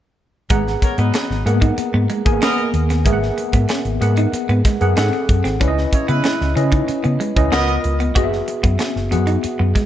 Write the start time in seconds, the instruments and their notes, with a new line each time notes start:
0.50 fingered electric bass G#1, clean electric guitar G#3, tine electric piano B3 G#4 F#5 A#5, kick, closed hi-hat
0.67 snare
0.82 horn section C#4 A#4 C#5, muted clean electric guitar stroke, kick, closed hi-hat
0.98 fingered electric bass G#2, horn section F#3 D#4 B4, clean electric guitar B3, closed hi-hat
1.14 clean electric guitar C#4, snare, closed hi-hat
1.30 fingered electric bass G#1, snare
1.46 fingered electric bass G#2, tine electric piano A#3 G#4 A#4 F#5, muted clean electric guitar stroke, closed hi-hat
1.52 tine electric piano B3
1.61 clean electric guitar D#4, kick, closed hi-hat
1.78 muted fingered electric bass stroke, muted clean electric guitar stroke, closed hi-hat
1.94 fingered electric bass G#2, clean electric guitar B3
2.10 clean electric guitar G#3, closed hi-hat
2.25 fingered electric bass G#1, tine electric piano A#3 G#4 A#4 G#5, kick, closed hi-hat
2.32 tine electric piano B3
2.42 horn section B3 A#4 D#5, clean electric guitar C#4, snare, closed hi-hat
2.58 muted clean electric guitar stroke, closed hi-hat
2.73 fingered electric bass D#2, closed hi-hat
2.90 clean electric guitar B3, snare, closed hi-hat
3.05 fingered electric bass G#1, clean electric guitar G#3, tine electric piano B3 G#4 A#4 E5, kick, closed hi-hat
3.13 tine electric piano F#5
3.23 snare
3.38 muted clean electric guitar stroke, closed hi-hat
3.53 fingered electric bass G#2, clean electric guitar B3, kick, closed hi-hat
3.69 clean electric guitar C#4, snare, closed hi-hat
3.85 fingered electric bass G#1, closed hi-hat
4.01 fingered electric bass G#2, tine electric piano B3 G#4 A#4 F#5, muted clean electric guitar stroke, closed hi-hat
4.17 clean electric guitar D#4, closed hi-hat
4.33 muted fingered electric bass stroke, muted clean electric guitar stroke, closed hi-hat
4.49 fingered electric bass G#2, clean electric guitar B3, closed hi-hat
4.65 clean electric guitar G#3, kick, snare, closed hi-hat
4.81 fingered electric bass F#2, tine electric piano B3 G#4 A#4 F#5, closed hi-hat
4.96 fingered electric bass G#2, tine electric piano C4 G#4 A4 F#5, clean electric guitar D#4, snare, closed hi-hat
5.13 muted clean electric guitar stroke, closed hi-hat
5.29 fingered electric bass F#2, kick, closed hi-hat
5.44 fingered electric bass G#1, clean electric guitar C4, snare, closed hi-hat
5.60 fingered electric bass C#2, tine electric piano C#4 E4 B4 D5, clean electric guitar C#4, kick, closed hi-hat
5.68 tine electric piano D#5
5.78 snare
5.92 horn section G#3 E4 C#5, muted clean electric guitar stroke, kick, closed hi-hat
6.08 fingered electric bass C#3, horn section G#3 E4 B4, clean electric guitar B3, closed hi-hat
6.24 clean electric guitar C#4, snare, closed hi-hat
6.41 fingered electric bass C#2, snare
6.55 fingered electric bass C#3, tine electric piano C#4 E4 B4 D#5, muted clean electric guitar stroke, closed hi-hat
6.72 clean electric guitar D#4, kick, closed hi-hat
6.88 muted clean electric guitar stroke, muted fingered electric bass stroke, closed hi-hat
7.04 fingered electric bass C#3, clean electric guitar B3, closed hi-hat
7.20 clean electric guitar G#3, closed hi-hat
7.36 fingered electric bass C#2, tine electric piano C#4 E4 B4 D#5, kick, closed hi-hat
7.52 fingered electric bass C#2, tine electric piano B3 F4 A#4 D#5, horn section B3 A#4 D#5, clean electric guitar C#4, snare, closed hi-hat
7.68 muted clean electric guitar stroke, closed hi-hat
7.84 fingered electric bass C#2, closed hi-hat
8.00 clean electric guitar B3, closed hi-hat
8.15 fingered electric bass F#1, tine electric piano B3 F#4 G#4 D#5, clean electric guitar F#4, kick, closed hi-hat
8.23 tine electric piano E5
8.33 snare
8.48 muted clean electric guitar stroke, closed hi-hat
8.63 fingered electric bass F#2, clean electric guitar B3, kick, closed hi-hat
8.79 clean electric guitar C#4, snare, closed hi-hat
8.96 fingered electric bass F#1, snare
9.11 fingered electric bass F#2, tine electric piano B3 F#4 G#4 F#5, muted clean electric guitar stroke, closed hi-hat
9.27 clean electric guitar D#4, closed hi-hat
9.43 muted clean electric guitar stroke, muted fingered electric bass stroke, closed hi-hat
9.59 fingered electric bass F#2, clean electric guitar B3
9.75 clean electric guitar G#3, kick, snare, closed hi-hat